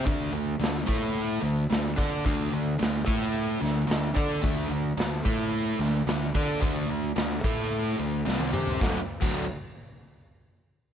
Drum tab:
CC |----------------|----------------|----------------|----------------|
HH |o-o-o-o-o-o-o-o-|o-o-o-o-o-o-o-o-|o-o-o-o-o-o-o-o-|o-o-o-o-o-o-----|
SD |----oo------o---|----o-----o-o---|----o-----o-o---|----oo------o---|
T1 |----------------|----------------|----------------|-------------o--|
T2 |----------------|----------------|----------------|--------------o-|
FT |----------------|----------------|----------------|---------------o|
BD |o-----o-------o-|o-----o-------o-|o-----o-------o-|o-----o---------|

CC |---x------------|
HH |----------------|
SD |o---------------|
T1 |----------------|
T2 |----------------|
FT |----------------|
BD |o--o------------|